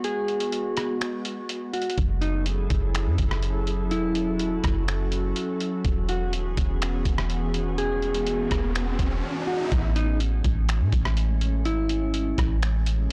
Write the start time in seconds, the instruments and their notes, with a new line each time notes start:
Already playing: ambient pad G#3 B3 F#4
0.04 clean electric guitar G#4, closed hi-hat
0.28 closed hi-hat
0.40 closed hi-hat
0.52 closed hi-hat
0.77 cross-stick, closed hi-hat
1.01 finger snap, closed hi-hat
1.25 closed hi-hat
1.49 closed hi-hat
1.73 clean electric guitar F#4, closed hi-hat
1.82 closed hi-hat
1.90 closed hi-hat
1.98 808-style bass F#1, ambient pad F#3 C#4 E4 G#4 A4, kick, closed hi-hat
2.21 clean electric guitar D#4, closed hi-hat
2.46 closed hi-hat
2.70 808-style bass F#1, kick, closed hi-hat
2.95 finger snap, closed hi-hat
3.06 808-style bass F#2
3.18 808-style bass F#1, kick, closed hi-hat
3.31 cross-stick
3.42 closed hi-hat
3.67 closed hi-hat
3.91 808-style bass E1, clean electric guitar E4, ambient pad F#4, closed hi-hat
4.15 closed hi-hat
4.39 closed hi-hat
4.64 808-style bass F#1, kick, cross-stick, closed hi-hat
4.88 finger snap, closed hi-hat
5.12 closed hi-hat
5.36 closed hi-hat
5.60 closed hi-hat
5.85 808-style bass E1, ambient pad E3 B3 F#4 G#4, kick, closed hi-hat, riser
6.09 clean electric guitar F#4, closed hi-hat
6.33 808-style bass D#1, closed hi-hat
6.57 808-style bass E1, kick, closed hi-hat
6.82 finger snap, closed hi-hat
7.05 808-style bass E1, kick, closed hi-hat
7.18 cross-stick
7.30 closed hi-hat
7.54 closed hi-hat
7.78 clean electric guitar G#4, closed hi-hat
8.02 closed hi-hat
8.14 closed hi-hat
8.27 closed hi-hat
8.51 808-style bass E1, kick, cross-stick, closed hi-hat
8.75 finger snap, closed hi-hat
8.99 808-style bass E1, kick, closed hi-hat
9.47 clean electric guitar F#4
9.71 808-style bass A1, ambient pad G#3 A3 C#4, kick, closed hi-hat
9.96 clean electric guitar D#4, closed hi-hat
10.20 closed hi-hat
10.44 808-style bass A1, kick, closed hi-hat
10.69 finger snap, closed hi-hat
10.81 808-style bass A2
10.92 808-style bass A1, kick, closed hi-hat
11.05 cross-stick
11.17 closed hi-hat
11.41 closed hi-hat
11.65 808-style bass G#1, clean electric guitar E4, closed hi-hat
11.89 closed hi-hat
12.14 closed hi-hat
12.38 808-style bass A1, kick, cross-stick, closed hi-hat
12.62 finger snap, closed hi-hat
12.86 closed hi-hat